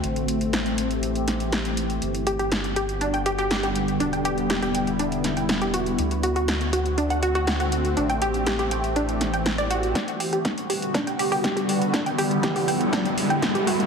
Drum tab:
HH |xxxxxxxxxxxxxxxx|xxxxxxxxxxxxxxxx|xxxxxxxxxxxxxxxx|xxxxxxxxxxxxxxxx|
SD |----o-----o-o---|----o-------o---|----o-----o-o---|----o-------o---|
BD |----------------|----------------|----------------|----------------|

HH |xxxxxxxxxxxxxxxx|xxoxxxoxxxooxxox|xxoxxooxxxoxxxox|
SD |----o-----o-o---|o---o---o---o---|o---o---o---o---|
BD |----------------|o---o---o---o---|o---o---o---o---|